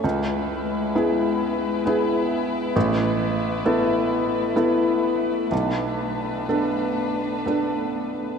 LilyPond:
<<
  \new Staff \with { instrumentName = "String section" } { \time 3/4 \key b \dorian \tempo 4 = 66 << { <e' b'>2.~ | <e' b'>2. | <d' b'>2. | } \\ { gis2. | a2.~ | a2. | } >> }
  \new Staff \with { instrumentName = "Felt piano" } { \time 3/4 \key b \dorian cis,4 <b e' gis'>4 <b e' gis'>4 | a,,4 <b e' a'>4 <b e' a'>4 | b,,4 <b d' a'>4 <b d' a'>4 | }
>>